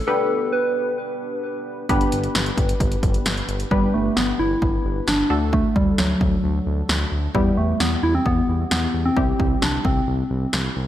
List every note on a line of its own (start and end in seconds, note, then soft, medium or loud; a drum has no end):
0.07 1.86 B3 medium
0.07 1.86 D4 medium
0.07 1.86 G4 medium
0.07 0.54 A4 loud
0.07 1.86 B4 medium
0.53 0.98 B4 medium
1.89 2.05 G1 loud
1.89 3.67 B3 medium
1.89 3.67 D4 medium
1.89 3.68 G4 medium
1.89 3.68 B4 medium
1.89 kick loud
1.89 closed hi-hat medium
2.01 closed hi-hat medium
2.12 2.28 G1 loud
2.12 closed hi-hat medium
2.24 closed hi-hat medium
2.35 2.51 G1 loud
2.35 snare loud
2.35 closed hi-hat medium
2.46 closed hi-hat medium
2.57 2.73 G1 loud
2.57 kick medium
2.57 closed hi-hat medium
2.69 closed hi-hat medium
2.80 2.96 G1 loud
2.80 kick medium
2.80 closed hi-hat medium
2.92 closed hi-hat medium
3.03 3.19 G1 loud
3.03 kick medium
3.03 closed hi-hat medium
3.14 closed hi-hat soft
3.26 3.42 G1 loud
3.26 snare loud
3.26 closed hi-hat medium
3.37 closed hi-hat soft
3.49 3.64 G1 loud
3.49 closed hi-hat medium
3.60 closed hi-hat medium
3.71 3.87 G1 loud
3.71 3.92 G3 medium
3.71 5.27 B3 medium
3.71 5.27 D4 medium
3.71 5.27 G4 medium
3.71 5.27 B4 medium
3.71 kick loud
3.94 4.10 G1 loud
3.94 4.18 A3 medium
4.16 4.33 G1 loud
4.16 4.41 B3 loud
4.16 snare medium
4.39 4.55 G1 loud
4.39 4.85 E4 loud
4.62 4.78 G1 loud
4.62 kick medium
4.85 5.01 G1 loud
5.07 5.23 G1 loud
5.07 5.55 D4 loud
5.07 snare loud
5.30 5.62 D2 loud
5.30 7.31 A3 medium
5.30 7.31 D4 medium
5.30 7.31 F#4 medium
5.30 7.31 A4 medium
5.53 5.77 A3 loud
5.53 kick loud
5.76 5.92 D2 loud
5.76 6.00 G3 loud
5.76 kick loud
5.98 6.14 D2 loud
5.98 7.12 F#3 medium
5.98 snare loud
6.21 6.37 D2 medium
6.21 kick medium
6.44 6.60 D2 loud
6.66 6.82 D2 loud
6.89 7.05 D2 loud
6.89 snare loud
7.12 7.28 D2 medium
7.35 7.51 E2 loud
7.35 7.59 G3 loud
7.35 9.13 G3 medium
7.35 9.13 B3 medium
7.35 9.13 E4 medium
7.35 9.13 G4 medium
7.35 kick loud
7.57 7.73 E2 medium
7.57 7.82 A3 loud
7.80 7.96 E2 loud
7.80 8.05 B3 loud
7.80 snare loud
8.03 8.19 E2 loud
8.03 8.16 E4 loud
8.15 8.27 C4 loud
8.26 8.42 E2 loud
8.26 8.71 B3 loud
8.26 kick medium
8.48 8.64 E2 loud
8.71 8.87 E2 loud
8.71 9.03 B3 loud
8.71 snare loud
8.94 9.10 E2 medium
9.05 9.64 C4 loud
9.17 9.33 C2 loud
9.17 10.87 G3 medium
9.17 10.87 C4 medium
9.17 10.87 E4 medium
9.17 10.87 G4 medium
9.17 kick loud
9.40 9.55 C2 loud
9.40 kick loud
9.62 9.78 C2 loud
9.62 9.84 D4 loud
9.62 snare loud
9.85 10.01 C2 loud
9.85 10.49 C4 medium
9.85 kick medium
10.08 10.23 C2 loud
10.30 10.46 C2 loud
10.53 10.69 C2 loud
10.53 snare loud
10.76 10.87 C2 loud